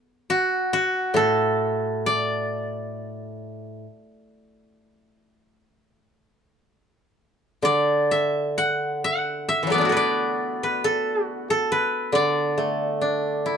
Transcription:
0.30 F#4
0.73 F#4
1.14 A2 A4
2.06 D5
7.62 D3 D5
8.11 E5
8.58 F#5
9.04 F#5
9.49 E5
9.63 E3
9.67 F#3 A3
9.72 B3 D5
9.78 D4 E4
9.85 F#4
9.89 A4 B4
9.97 D5
10.63 B4
10.84 A4
11.25 F#4
11.50 A4
11.72 B4
12.12 D3 D5
12.58 A3
13.01 D4
13.46 E4

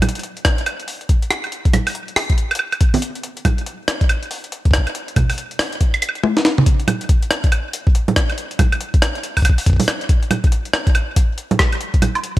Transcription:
0.02 closed hi-hat, low conga, high woodblock
0.09 closed hi-hat
0.15 closed hi-hat
0.19 closed hi-hat
0.23 closed hi-hat
0.37 closed hi-hat
0.45 kick, cross-stick, closed hi-hat
0.58 closed hi-hat
0.66 closed hi-hat, high woodblock
0.80 closed hi-hat
0.88 open hi-hat
1.01 closed hi-hat
1.09 kick, closed hi-hat
1.22 closed hi-hat
1.31 cross-stick, closed hi-hat
1.44 closed hi-hat, high woodblock
1.52 closed hi-hat
1.65 kick, closed hi-hat
1.73 closed hi-hat, low conga, high woodblock
1.87 open hi-hat, high woodblock
1.95 closed hi-hat
2.08 closed hi-hat
2.16 cross-stick, open hi-hat
2.30 kick, closed hi-hat
2.38 closed hi-hat
2.51 closed hi-hat, high woodblock
2.55 closed hi-hat
2.59 high woodblock
2.72 closed hi-hat, high woodblock
2.81 kick, closed hi-hat
2.94 open hi-hat, low conga
3.02 closed hi-hat
3.15 closed hi-hat
3.23 closed hi-hat
3.37 closed hi-hat
3.45 kick, closed hi-hat, low conga, high woodblock
3.58 closed hi-hat
3.66 closed hi-hat
3.88 cross-stick, closed hi-hat
4.01 kick, closed hi-hat
4.09 closed hi-hat, high woodblock
4.23 closed hi-hat
4.31 open hi-hat
4.44 closed hi-hat
4.52 closed hi-hat
4.65 kick, closed hi-hat
4.71 kick, cross-stick, closed hi-hat
4.78 kick
4.87 closed hi-hat, high woodblock
4.95 closed hi-hat
5.08 closed hi-hat
5.16 kick, closed hi-hat, low conga, high woodblock
5.30 open hi-hat, high woodblock
5.38 closed hi-hat
5.51 closed hi-hat
5.59 cross-stick, open hi-hat
5.72 closed hi-hat
5.81 kick, closed hi-hat
5.94 closed hi-hat, high woodblock
6.02 closed hi-hat, high woodblock
6.09 high woodblock
6.15 closed hi-hat
6.24 high tom
6.37 snare
6.45 snare
6.58 mid tom
6.66 kick, closed hi-hat
6.80 closed hi-hat
6.88 closed hi-hat, low conga, high woodblock
7.01 closed hi-hat
7.09 kick, closed hi-hat
7.22 closed hi-hat
7.31 cross-stick, closed hi-hat
7.44 kick, closed hi-hat
7.52 closed hi-hat, high woodblock
7.73 closed hi-hat
7.87 kick
7.95 closed hi-hat
8.08 closed hi-hat, low conga
8.16 kick, cross-stick, closed hi-hat
8.30 closed hi-hat, high woodblock
8.38 closed hi-hat
8.51 closed hi-hat
8.59 kick, closed hi-hat, low conga, high woodblock
8.72 closed hi-hat, high woodblock
8.81 closed hi-hat
8.94 kick, closed hi-hat
9.02 cross-stick, closed hi-hat
9.15 closed hi-hat
9.23 closed hi-hat
9.37 kick, open hi-hat, high woodblock
9.42 kick, closed hi-hat, high woodblock
9.49 kick
9.58 open hi-hat
9.66 kick, closed hi-hat
9.70 kick
9.73 kick
9.76 kick, open hi-hat, low conga
9.88 cross-stick, closed hi-hat, high woodblock
10.01 closed hi-hat
10.09 kick, closed hi-hat
10.23 closed hi-hat
10.31 closed hi-hat, low conga, high woodblock
10.44 kick, closed hi-hat
10.52 closed hi-hat
10.65 closed hi-hat
10.73 cross-stick
10.87 kick, closed hi-hat
10.95 closed hi-hat, high woodblock
11.16 kick, closed hi-hat
11.38 closed hi-hat
11.51 closed hi-hat, low conga
11.59 kick, cross-stick, closed hi-hat
11.72 closed hi-hat, high woodblock
11.81 closed hi-hat
11.94 kick, closed hi-hat
12.02 closed hi-hat, low conga, high woodblock
12.15 closed hi-hat, high woodblock
12.24 closed hi-hat

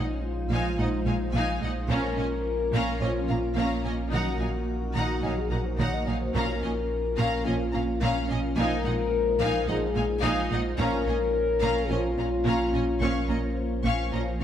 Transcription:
Already playing: A#1 G#3 D#4 F4 C5
0.24 F4
0.50 A#1 A#2 F3 D#4 F5 G#5
0.78 A#1 A#2 F3 G#3 D#4 D#5 F#5
1.05 A#1 A#2 G#3 D#4 F5 G#5
1.33 A#1 A#2 F3 D#4 F5 G#5
1.61 A#1 A#2 G#3 D#4 D#5 F#5
1.89 A#1 A#2 F3 A#3 C#4 F4 A#4 F5 A#5
2.17 A#1 A#2 C#4 D#5 G#5
2.72 A#1 A#2 A#3 C#4 F5 A#5
3.00 A#1 A#2 F3 C#4 F4 D#5 G#5
3.28 A#1 A#2 C#4 F5 A#5
3.56 A#1 A#2 A#3 C#4 F5 A#5
3.84 A#1 A#2 C#4 D#5 G#5
4.12 A#1 A#2 D#3 F#3 D#4 F#4 F#5 A#5
4.39 A#1 A#2 F#3 D#4 F5 G#5
4.95 A#1 A#2 D#3 D#4 F#5 A#5
5.23 A#1 A#2 F#3 D#4 F5 G#5
5.38 G#4
5.50 A#1 A#2 F#3 D#4 A#4 F#5 A#5
5.65 C5
5.78 A#1 A#2 D#3 D#4 C#5 F#5 A#5
5.93 D#5
6.06 A#1 A#2 F#3 D#4 C#5 F5 G#5
6.20 C5
6.34 A#1 A#2 F3 A#3 C#4 F4 A#4 F5 A#5
6.62 A#1 A#2 C#4 D#5 G#5
7.17 A#1 A#2 A#3 C#4 F5 A#5
7.45 A#1 A#2 F3 C#4 F4 D#5 G#5
7.73 A#1 A#2 C#4 F5 A#5
8.00 A#1 A#2 A#3 C#4 F5 A#5
8.28 A#1 A#2 C#4 D#5 G#5
8.56 A#1 A#2 F3 G#3 D#4 A#4 C5 F5 G#5
8.84 A#1 A#2 G#3 D#4 D#5 F#5
9.40 A#1 A#2 F3 D#4 F5 G#5
9.67 A#1 A#2 F3 G#3 D#4 G#4 D#5 F#5
9.95 A#1 A#2 G#3 D#4 F5 G#5
10.23 A#1 A#2 F3 D#4 F4 F5 G#5
10.51 A#1 A#2 G#3 D#4 D#5 F#5
10.78 A#1 A#2 F3 A#3 C#4 F4 A#4 C#5 F5 A#5
11.07 A#1 A#2 C#4 D#5 G#5
11.62 A#1 A#2 A#3 C#4 F5 A#5
11.90 A#1 A#2 F3 C#4 F4 D#5 G#5
12.17 A#1 A#2 C#4 F5 A#5
12.45 A#1 A#2 A#3 C#4 F5 A#5
12.73 A#1 A#2 C#4 D#5 G#5
13.01 A#1 A#2 F3 A#3 C#4 C5 F5 C#6
13.28 A#1 A#2 C#4 D#5 A#5
13.84 A#1 A#2 A#3 C#4 F5 C#6
14.11 A#1 A#2 F3 C#4 D#5 A#5
14.40 A#1 A#2 C#4 F5 C#6

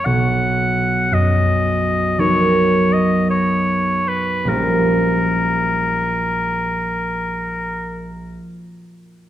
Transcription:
Already playing: A#4
0.05 B1 F#5
1.11 F#2 D#5
2.18 F#3 B3 D#4 A#4 C#5
2.93 D#5
3.30 C#5
4.08 B4
4.45 A#1 G3 C#4 F4 A#4
4.49 A#4

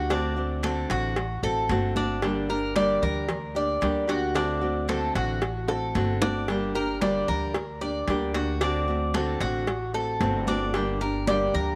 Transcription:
Already playing: D2 A#3
0.10 D3 A3 C4 D4 F#4, cowbell, high conga
0.36 A3 C4 F#4, high conga
0.63 D3 A3 C4 F#4 A4, cowbell, high conga
0.90 A1 F#4, cowbell, high conga
1.16 muted nylon-string guitar stroke, cowbell, high conga
1.43 A1 A3 C4 F#4 A4, high conga
1.69 G1 D3 A3 C4 F#4, cowbell, high conga
1.96 A3 C4 D4 F#4, high conga
2.22 D3 G3 A#3 D4 G4, cowbell, high conga
2.49 A#3 D4 G4 A#4, high conga
2.76 D3 G3 A#3 D4 G4 D5, cowbell, high conga
3.02 D2 A#4, high conga, low conga
3.29 muted nylon-string guitar stroke, cowbell, high conga, low conga
3.55 A#3 D4 G4 D5, high conga
3.81 D2 D3 G3 A#3 D4 G4, cowbell, high conga
4.08 A#3 D4 F#4 G4, cowbell, high conga
4.35 D3 A3 C4 D4 F#4, cowbell, high conga
4.61 A3 C4 F#4, high conga
4.88 D3 A3 C4 F#4 A4, cowbell, high conga
5.15 A1 F#4, cowbell, high conga
5.41 muted nylon-string guitar stroke, cowbell, high conga
5.68 A3 C4 F#4 A4, high bongo, high conga
5.95 G1 D3 A3 C4 F#4, cowbell, high conga
6.21 A3 C4 D4 F#4, low bongo, high conga
6.48 D3 G3 A#3 D4 G4, cowbell, high conga
6.75 A#3 D4 G4 A#4, high conga
7.01 D3 G3 A#3 D4 G4 D5, cowbell, high conga
7.28 D2 A#4, high conga, low conga
7.54 muted nylon-string guitar stroke, cowbell, high conga
7.81 A#3 D4 G4 D5, high conga
8.08 D2 D3 G3 A#3 D4 G4, cowbell, high conga
8.34 A#3 D4 F#4 G4, cowbell, high conga
8.61 D3 A3 C4 D4 F#4, cowbell, high conga
8.88 A3 C4 F#4, high conga
9.14 D3 A3 C4 F#4 A4, cowbell, high conga
9.41 A1 F#4, cowbell, high conga
9.67 muted nylon-string guitar stroke, cowbell, high conga
9.94 A3 C4 F#4 A4, high conga
10.20 G1 D3 A3 C4 F#4, cowbell, high conga
10.47 A3 C4 D4 F#4, high conga
10.74 D3 G3 A#3 D4 G4, cowbell, high conga
11.00 A#3 D4 G4 A#4, high conga
11.27 D3 G3 A#3 D4 G4 D5, cowbell, high conga
11.54 D2 A#4, high conga, low conga

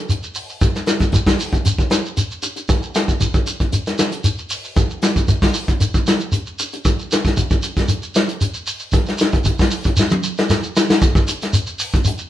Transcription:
0.09 closed hi-hat, shekere
0.23 shekere
0.35 open hi-hat, shekere
0.49 shekere
0.61 kick, closed hi-hat, shekere
0.75 snare, shekere
0.86 snare, closed hi-hat, shekere
0.99 kick, snare, closed hi-hat, shekere
1.12 kick, snare, closed hi-hat, shekere
1.27 kick, snare, shekere
1.39 open hi-hat, shekere
1.52 kick, closed hi-hat, shekere
1.65 closed hi-hat, shekere
1.78 kick, shekere
1.90 snare, closed hi-hat, shekere
2.05 shekere
2.17 closed hi-hat, shekere
2.31 shekere
2.42 closed hi-hat, shekere
2.56 closed hi-hat, shekere
2.69 kick, closed hi-hat, shekere
2.83 shekere
2.95 snare, closed hi-hat, shekere
3.08 kick, shekere
3.20 kick, closed hi-hat, shekere
3.34 kick, shekere
3.46 closed hi-hat, shekere
3.60 kick, closed hi-hat, shekere
3.72 closed hi-hat, shekere
3.87 snare, shekere
3.98 snare, closed hi-hat, shekere
4.12 closed hi-hat, shekere
4.24 closed hi-hat, shekere
4.38 shekere
4.50 open hi-hat, shekere
4.64 shekere
4.76 kick, closed hi-hat, shekere
4.90 shekere
5.02 snare, closed hi-hat, shekere
5.16 kick, closed hi-hat, shekere
5.28 kick, closed hi-hat, shekere
5.42 kick, snare, shekere
5.54 open hi-hat, shekere
5.68 kick, closed hi-hat, shekere
5.80 closed hi-hat, shekere
5.94 kick, shekere
6.07 snare, closed hi-hat, shekere
6.20 shekere
6.32 closed hi-hat, shekere
6.46 shekere
6.59 closed hi-hat, shekere
6.72 closed hi-hat, shekere
6.85 kick, closed hi-hat, shekere
6.99 shekere
7.12 snare, closed hi-hat, shekere
7.24 kick, snare, shekere
7.37 kick, closed hi-hat, shekere
7.50 kick, shekere
7.63 closed hi-hat, shekere
7.77 kick, snare, closed hi-hat, shekere
7.88 closed hi-hat, shekere
8.03 shekere
8.15 snare, closed hi-hat, shekere
8.28 closed hi-hat, shekere
8.41 closed hi-hat, shekere
8.54 shekere
8.67 open hi-hat, shekere
8.80 shekere
8.92 kick, closed hi-hat, shekere
9.06 snare, shekere
9.18 snare, closed hi-hat, shekere
9.32 kick, closed hi-hat, shekere
9.44 kick, closed hi-hat, shekere
9.58 kick, snare, shekere
9.71 open hi-hat, shekere
9.84 kick, closed hi-hat, shekere
9.97 snare, shekere
10.10 high tom, shekere
10.23 shekere
10.37 snare, shekere
10.50 snare, shekere
10.63 shekere
10.76 snare, shekere
10.90 snare, shekere
11.02 kick, closed hi-hat, shekere
11.15 kick, snare, shekere
11.28 closed hi-hat, shekere
11.42 snare, closed hi-hat, shekere
11.53 closed hi-hat, shekere
11.67 shekere
11.79 open hi-hat, shekere
11.93 kick, closed hi-hat, shekere
12.05 closed hi-hat, shekere
12.18 shekere

